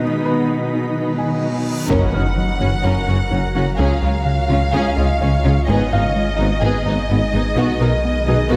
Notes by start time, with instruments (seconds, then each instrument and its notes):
Already playing: ambient pad D#3 D#4 B4, viola section B3 D#4
0.01 cello section B2, ambient pad F#3, reverse cymbal
0.25 felt piano B4 B5
1.18 felt piano G#5
1.88 tuba F#1, double bass section F#1, sub bass F#1, cello section F#2, analog synth bass F#2, ambient pad C#3 F#3 F#4 A#4, french horn section A#3 F#4, viola section C#4, violin section A#4 F#5, impact
2.13 tuba F#1, double bass section F#1, analog synth bass F#2, cello section F#2, viola section C#4, violin section F#4, felt piano F6
2.37 analog synth bass F#3
2.60 double bass section F#1, tuba F#1, cello section F#2, analog synth bass F#3, viola section C#4, violin section F#4
2.83 tuba F#1, double bass section F#1, cello section F#2, analog synth bass F#2, french horn section A#3 F#4, viola section C#4, violin section A#4
3.07 double bass section F#1, tuba F#1, analog synth bass F#2, cello section F#2, viola section C#4, violin section F#4
3.31 tuba F#1, double bass section F#1, cello section F#2, analog synth bass F#2, viola section C#4, violin section C#4
3.55 tuba F#1, double bass section F#1, cello section F#2, analog synth bass F#3, viola section C#4, violin section F#4
3.79 sub bass C#2, analog synth bass C#2, double bass section C#2, tuba C#2, cello section C#3, french horn section G#3 F4, ambient pad G#3 F4 C#5, viola section C#4, violin section G#4 F5
4.02 analog synth bass C#2, tuba C#2, double bass section C#2, cello section C#3, viola section C#4, violin section F4
4.26 analog synth bass C#3
4.49 double bass section C#2, tuba C#2, cello section C#3, analog synth bass C#3, viola section C#4, violin section F4
4.73 double bass section C#2, analog synth bass C#2, tuba C#2, cello section C#3, french horn section G#3 F4, viola section C#4, violin section G#4
4.96 tuba C#2, analog synth bass C#2, double bass section C#2, cello section C#3, viola section C#4, violin section F4, felt piano D#5
5.20 tuba C#2, double bass section C#2, analog synth bass C#2, cello section C#3, violin section C#4, viola section C#4
5.44 tuba C#2, double bass section C#2, cello section C#3, analog synth bass C#3, viola section C#4, violin section F4
5.68 double bass section G#1, tuba G#1, sub bass G#1, cello section G#2, analog synth bass G#2, ambient pad D#3 G#4 D#5, french horn section B3 D#4, viola section B3, violin section G#4 D#5
5.91 tuba G#1, double bass section G#1, cello section G#2, analog synth bass G#2, viola section B3, violin section D#4, felt piano F5
6.16 analog synth bass G#3
6.37 double bass section G#1, tuba G#1, cello section G#2, analog synth bass G#3, viola section B3, violin section D#4
6.61 double bass section G#1, tuba G#1, cello section G#2, analog synth bass G#2, french horn section B3 D#4, viola section B3, violin section G#4
6.85 double bass section G#1, tuba G#1, analog synth bass G#2, cello section G#2, viola section B3, violin section D#4
7.09 tuba G#1, double bass section G#1, analog synth bass G#2, cello section G#2, violin section B3, viola section B3
7.33 tuba G#1, double bass section G#1, cello section G#2, analog synth bass G#3, viola section B3, violin section D#4
7.56 tuba B1, sub bass B1, double bass section B1, cello section B2, analog synth bass B2, viola section B3, french horn section B3 D#4, ambient pad B3 F#4, violin section F#4
7.80 tuba B1, double bass section B1, cello section B2, analog synth bass B2, viola section B3, violin section D#4, felt piano A#4
8.05 analog synth bass B3
8.27 tuba B1, double bass section B1, cello section B2, viola section B3, analog synth bass B3, violin section D#4, felt piano G#4
8.50 tuba B1, double bass section B1, analog synth bass B2, cello section B2, viola section B3, french horn section B3 D#4, violin section F#4